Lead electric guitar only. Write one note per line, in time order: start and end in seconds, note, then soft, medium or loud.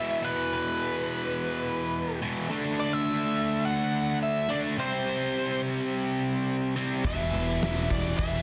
0.00 0.28 E5 loud
0.25 0.53 B4 loud
0.54 2.19 B4 medium
2.80 2.93 D5 medium
2.93 3.64 E5 loud
3.65 4.18 F#5 loud
4.23 4.51 E5 loud
4.50 4.58 D5 medium
4.80 5.60 C5 medium
7.07 7.87 E5 loud
7.91 8.17 D5 medium
8.18 8.42 E5 loud